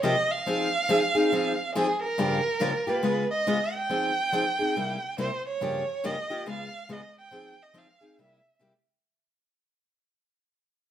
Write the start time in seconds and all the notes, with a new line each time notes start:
0.03 C3 F3 A#3 F4 G4 D#5
0.31 F5
0.46 F3 C4 D#4 G#4
0.89 F3 C4 D#4 G#4
1.15 C4 D#4 G#4
1.32 F3 C4 D#4 G#4
1.75 F3 C4 D#4 G#4
2.03 A#4
2.18 G2 C#3 F3 A#3 F4 G4
2.60 G2 C#3 F3 A#3 F4 G4
2.87 F3 A#3 F4 G4 B4
3.03 C#3 G#3 B3 F4 G#4
3.31 D#5
3.47 C#3 G#3 B3 F4 G#4
3.74 G5
3.89 F3 C4 D#4 G#4
4.32 F3 C4 D#4 G#4
4.59 C4 D#4 G#4
4.76 C3 G3 A#3 E4 G4
5.18 C3 G3 A#3 E4 G4 C5
5.47 C#5
5.61 G2 C#3 F3 A#3 F4 G4
6.04 G2 C#3 F3 A#3 F4 G4 D#5
6.30 F3 A#3 F4 G4
6.46 C#3 G#3 B3 F4 G#4
6.50 F5
6.89 C#3 G#3 B3 F4 G#4 D#5
7.19 G5
7.31 F3 C4 D#4 G#4
7.63 D#5
7.74 F3 C4 D#4 G#4
7.79 F5
8.01 C4 D#4 G#4
8.18 C3 G3 A#3 E4 G4 E5
8.59 C3 G3 A#3 E4 G4